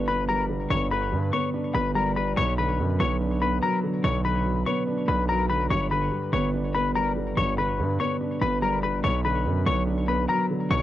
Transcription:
Already playing: 808-style bass G1, grand piano G2 D3 G3 B3 D4
0.08 grand piano B3, clean electric guitar B4 B5
0.29 grand piano G3, clean electric guitar A#4 A#5
0.50 grand piano D3
0.70 808-style bass G1, grand piano G2, clean electric guitar C#5 C#6
0.91 grand piano D3, clean electric guitar B4 B5
1.12 808-style bass G2, grand piano G3
1.33 grand piano B3, clean electric guitar C#5 C#6
1.54 grand piano D4
1.75 808-style bass G1, grand piano B3, clean electric guitar B4 B5
1.95 grand piano G3, clean electric guitar A#4 A#5
2.16 grand piano D3, clean electric guitar B4 B5
2.37 808-style bass B1, grand piano B2, clean electric guitar C#5 C#6
2.58 grand piano D3, clean electric guitar B4 B5
2.79 808-style bass F#2, grand piano F#3
2.99 808-style bass B1, grand piano B3, clean electric guitar C#5 C#6
3.20 grand piano D4
3.41 grand piano B3, clean electric guitar B4 B5
3.62 grand piano F#3, clean electric guitar A#4 A#5
3.83 grand piano D3
4.04 808-style bass B1, grand piano B2, clean electric guitar C#5 C#6
4.25 grand piano D3, clean electric guitar B4 B5
4.45 grand piano F#3
4.66 grand piano B3, clean electric guitar C#5 C#6
4.87 grand piano D4
5.08 808-style bass B1, grand piano B3, clean electric guitar B4 B5
5.29 grand piano F#3, clean electric guitar A#4 A#5
5.50 grand piano D3, clean electric guitar B4 B5
5.70 808-style bass G1, grand piano G2, clean electric guitar C#5 C#6
5.91 grand piano D3, clean electric guitar B4 B5
6.12 grand piano G3
6.33 808-style bass G1, grand piano B3, clean electric guitar C#5 C#6
6.54 grand piano D4
6.75 grand piano B3, clean electric guitar B4 B5
6.96 grand piano G3, clean electric guitar A#4 A#5
7.16 grand piano D3
7.37 808-style bass G1, grand piano G2, clean electric guitar C#5 C#6
7.58 grand piano D3, clean electric guitar B4 B5
7.79 808-style bass G2, grand piano G3
8.00 grand piano B3, clean electric guitar C#5 C#6
8.21 grand piano D4
8.41 808-style bass G1, grand piano B3, clean electric guitar B4 B5
8.62 grand piano G3, clean electric guitar A#4 A#5
8.83 grand piano D3, clean electric guitar B4 B5
9.04 808-style bass B1, grand piano B2, clean electric guitar C#5 C#6
9.25 grand piano D3, clean electric guitar B4 B5
9.46 808-style bass F#2, grand piano F#3
9.66 808-style bass B1, grand piano B3, clean electric guitar C#5 C#6
9.87 grand piano D4
10.08 grand piano B3, clean electric guitar B4 B5
10.29 grand piano F#3, clean electric guitar A#4 A#5
10.50 grand piano D3
10.71 808-style bass B1, grand piano B2, clean electric guitar C#5 C#6

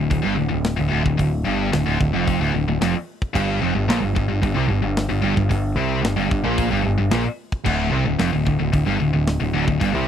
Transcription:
0.10 picked electric bass D1, distorted electric guitar D2, kick, open hi-hat
0.22 picked electric bass G1, distorted electric guitar G2
0.35 distorted electric guitar D2
0.40 picked electric bass D1
0.49 picked electric bass D1, distorted electric guitar D2
0.64 snare, open hi-hat
0.77 picked electric bass D1, distorted electric guitar D2
0.90 picked electric bass D1, distorted electric guitar D2
1.04 picked electric bass D1, distorted electric guitar D2, kick
1.18 picked electric bass D1, distorted electric guitar D2, kick, open hi-hat
1.45 picked electric bass G1, distorted electric guitar G2
1.72 picked electric bass D1, distorted electric guitar D2, snare, open hi-hat
1.86 picked electric bass D1, distorted electric guitar D2
2.00 picked electric bass D1, distorted electric guitar D2, kick
2.13 picked electric bass F1, distorted electric guitar F2
2.28 kick, open hi-hat
2.40 picked electric bass D1, distorted electric guitar D2
2.54 picked electric bass D1, distorted electric guitar D2
2.67 picked electric bass D1, distorted electric guitar D2
2.81 picked electric bass F1, distorted electric guitar F2, snare, open hi-hat
3.22 kick
3.34 picked electric bass G1, distorted electric guitar G2, kick, crash
3.62 picked electric bass F1, distorted electric guitar F2
3.75 picked electric bass G1, distorted electric guitar G2
3.88 picked electric bass A#1, distorted electric guitar A#2, snare, open hi-hat
4.01 picked electric bass G1, distorted electric guitar G2
4.15 picked electric bass G1, distorted electric guitar G2, kick
4.28 picked electric bass G1, distorted electric guitar G2
4.42 picked electric bass G1, distorted electric guitar G2, kick, open hi-hat
4.55 picked electric bass C2, distorted electric guitar C3
4.68 picked electric bass G1, distorted electric guitar G2
4.82 picked electric bass G1, distorted electric guitar G2
4.97 snare, open hi-hat
5.09 picked electric bass G1, distorted electric guitar G2
5.22 picked electric bass G1, distorted electric guitar G2
5.36 picked electric bass G1, distorted electric guitar G2, kick
5.49 picked electric bass G1, distorted electric guitar G2, kick, open hi-hat
5.76 picked electric bass C2, distorted electric guitar C3
6.02 picked electric bass G1, distorted electric guitar G2, snare, open hi-hat
6.16 picked electric bass G1, distorted electric guitar G2
6.30 picked electric bass G1, distorted electric guitar G2, kick
6.44 picked electric bass A#1, distorted electric guitar A#2
6.58 kick, open hi-hat
6.71 picked electric bass G1, distorted electric guitar G2
6.84 picked electric bass G1, distorted electric guitar G2
6.98 picked electric bass G1, distorted electric guitar G2
7.11 picked electric bass A#1, distorted electric guitar A#2, snare, open hi-hat
7.52 kick
7.65 picked electric bass D1, distorted electric guitar D2, kick, crash
7.91 picked electric bass C2, distorted electric guitar C3
8.05 picked electric bass D1, distorted electric guitar D2
8.19 picked electric bass F1, distorted electric guitar F2, snare, open hi-hat
8.33 picked electric bass D1, distorted electric guitar D2
8.45 picked electric bass D1, distorted electric guitar D2, kick
8.59 picked electric bass D1, distorted electric guitar D2
8.73 picked electric bass D1, distorted electric guitar D2, kick, open hi-hat
8.86 picked electric bass G1, distorted electric guitar G2
9.00 picked electric bass D1, distorted electric guitar D2
9.13 picked electric bass D1, distorted electric guitar D2
9.27 snare, open hi-hat
9.40 picked electric bass D1, distorted electric guitar D2
9.53 picked electric bass D1, distorted electric guitar D2
9.67 picked electric bass D1, distorted electric guitar D2, kick
9.80 picked electric bass G1, distorted electric guitar G2, kick, open hi-hat
9.93 picked electric bass C2, distorted electric guitar C3

